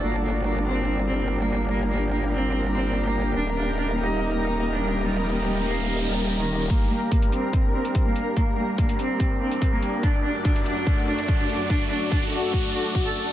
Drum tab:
HH |----------------|----------------|----------------|----------------|
BD |----------------|----------------|----------------|----------------|

HH |x---xxx-x--xx-x-|x---xxx-x--xx-x-|x---xxx-x--xx-x-|x---xxx-x--xx-x-|
BD |o---o---o---o---|o---o---o---o---|o---o---o---o---|o---o---o---o---|